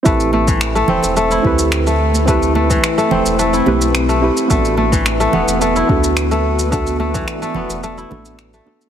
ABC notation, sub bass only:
X:1
M:4/4
L:1/16
Q:1/4=108
K:Ador
V:1 name="Sub bass" clef=bass
A,,,6 E,,, E,,,3 D,,6- | D,,4 z2 E,,, E,,,3 B,,,4- B,,, z | A,,,6 E,,, E,,,3 D,,6- | D,,4 z2 E,,, E,,,3 A,,,4 z2 |]